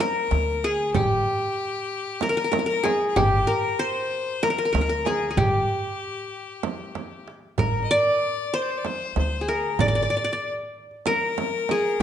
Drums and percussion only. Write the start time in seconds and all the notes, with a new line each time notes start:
0.00 darbuka tek
0.31 darbuka tek, frame drum
0.64 darbuka tek
0.94 frame drum, darbuka dum
1.75 darbuka ka
2.07 darbuka ka
2.21 darbuka tek, frame drum
2.53 darbuka tek, frame drum
2.85 darbuka tek, frame drum
3.16 darbuka dum, frame drum
3.95 darbuka ka
4.27 darbuka ka
4.43 darbuka tek, frame drum
4.75 darbuka tek, frame drum
5.06 darbuka tek, frame drum
5.37 frame drum, darbuka dum
6.32 darbuka ka
6.63 darbuka tek, frame drum
6.95 darbuka tek, frame drum
7.28 darbuka tek
7.58 frame drum, darbuka dum
8.38 darbuka ka
8.70 darbuka ka
8.85 darbuka tek, frame drum
9.16 darbuka tek, frame drum
9.49 darbuka tek
9.79 frame drum, darbuka dum
10.59 darbuka ka
10.91 darbuka ka
11.06 darbuka tek, frame drum
11.38 darbuka tek, frame drum
11.69 darbuka tek, frame drum